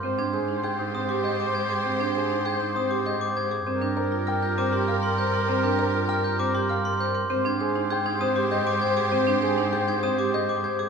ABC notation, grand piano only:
X:1
M:6/4
L:1/8
Q:1/4=198
K:Ablyd
V:1 name="Grand piano"
c z A z g z c z e z c z | c z A z g z c z e z c z | c z B z g z c z f z c z | c z B z g z c z f z c z |
c z A z g z c z e z c z | c z A z g z c z e z c z |]